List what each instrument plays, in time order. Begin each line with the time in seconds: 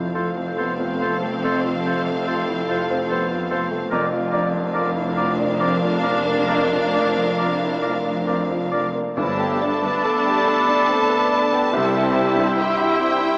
Already playing: double bass section F1, grand piano F2 C3 C4 E4 F4, cello section F2, french horn section A3 C4, viola section C4, violin section A4 F5
0.14 grand piano F4, clarinet A4, oboe C5, flute C6
0.36 grand piano C4
0.56 grand piano B3, clarinet A4, oboe C5, flute C6
0.79 grand piano F4
1.00 grand piano C4, clarinet A4, oboe C5, flute C6
1.23 grand piano A3
1.43 grand piano F2, clarinet A4, oboe C5, flute C6
1.64 grand piano F4
1.85 grand piano C4, clarinet A4, oboe C5, flute C6
2.06 grand piano C3
2.27 grand piano F4, clarinet A4, oboe C5, flute C6
2.48 grand piano E4
2.68 grand piano F4, clarinet A4, oboe C5, flute C6
2.90 grand piano C4
3.09 grand piano B3, clarinet A4, oboe C5, flute C6
3.31 grand piano F4
3.50 grand piano C4, clarinet A4, oboe C5, flute C6
3.71 grand piano A3
3.90 double bass section F1, cello section F2, grand piano F2, french horn section A#3 D4, viola section D4, violin section A#4 F5, clarinet A#4, oboe D5, flute A#5
4.12 grand piano F4
4.31 grand piano D4, clarinet A#4, oboe D5, flute A#5
4.54 grand piano F3
4.74 grand piano F4, clarinet A#4, oboe D5, flute A#5
4.96 grand piano E4
5.15 grand piano F4, clarinet A#4, oboe D5, flute A#5
5.40 grand piano D4
5.59 grand piano C4, clarinet A#4, oboe D5, flute A#5
5.82 grand piano F4
6.01 grand piano D4, clarinet A#4, oboe D5, flute A#5
6.26 grand piano A#3
6.47 grand piano F2, clarinet A#4, oboe D5, flute A#5
6.72 grand piano F4
6.93 grand piano D4, clarinet A#4, oboe D5, flute A#5
7.17 grand piano F3
7.38 grand piano F4, clarinet A#4, oboe D5, flute A#5
7.62 grand piano E4
7.82 grand piano F4, clarinet A#4, oboe D5, flute A#5
8.05 grand piano D4
8.26 grand piano C4, clarinet A#4, oboe D5, flute A#5
8.51 grand piano F4
8.72 grand piano D4, clarinet A#4, oboe D5, flute A#5
8.95 grand piano A#3
9.17 double bass section G1, timpani G2, grand piano G2, cello section G2, french horn section A3 B3, violin section D4 A5, viola section D4, clarinet A4, oboe D5, flute B5
9.39 violin section G4, grand piano A4
9.61 grand piano D4, violin section A4
9.83 grand piano D3, violin section B4
10.05 grand piano A4, violin section A4
10.26 grand piano G4, violin section G4
10.47 violin section D4, grand piano A4
10.69 grand piano D4, violin section G4
10.89 grand piano C4, violin section A4
11.10 grand piano A4, violin section B4
11.32 grand piano D4, violin section A4
11.52 grand piano B3, violin section G4
11.73 grand piano C2, double bass section C2, cello section C3, french horn section G3 E4, violin section C4, viola section E4, clarinet G4, oboe E5, flute C6
11.94 violin section E4, grand piano G4
12.15 grand piano E4, violin section G4
12.36 grand piano G2, violin section C5
12.57 grand piano G4, violin section G4 G5
12.78 violin section E4, grand piano F#4
12.98 violin section C4, grand piano G4
13.19 grand piano E4, violin section E4